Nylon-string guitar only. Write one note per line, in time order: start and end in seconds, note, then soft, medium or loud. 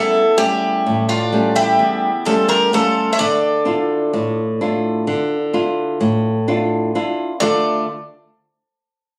0.00 0.83 E2 medium
0.00 0.21 G3 medium
0.00 0.21 A3 soft
0.00 0.21 C#4 medium
0.37 1.13 G3 soft
0.37 1.13 A3 soft
0.37 1.14 C#4 medium
0.86 1.77 A2 medium
1.32 2.07 G3 medium
1.32 2.08 A3 soft
1.32 2.08 C#4 medium
1.79 2.70 E2 medium
2.27 2.71 G3 soft
2.27 2.72 A3 soft
2.27 2.72 C#4 medium
2.72 3.10 G3 medium
2.72 3.11 A3 medium
2.72 3.11 C#4 medium
3.20 4.11 D3 medium
3.65 4.41 D4 medium
3.65 4.41 E4 soft
3.65 4.41 F4 medium
4.13 5.04 A2 medium
4.61 5.35 D4 soft
4.61 5.35 E4 soft
4.61 5.36 F4 medium
5.07 5.98 D3 medium
5.53 6.28 D4 soft
5.53 6.29 E4 soft
5.53 6.29 F4 medium
6.01 6.91 A2 medium
6.48 6.94 D4 medium
6.48 6.94 E4 soft
6.48 6.94 F4 medium
6.95 7.32 D4 soft
6.95 7.32 E4 soft
6.95 7.32 F4 medium
7.41 7.84 D3 medium
7.41 7.85 A3 medium
7.41 7.85 D4 medium
7.41 7.85 F4 soft
7.41 7.85 A4 medium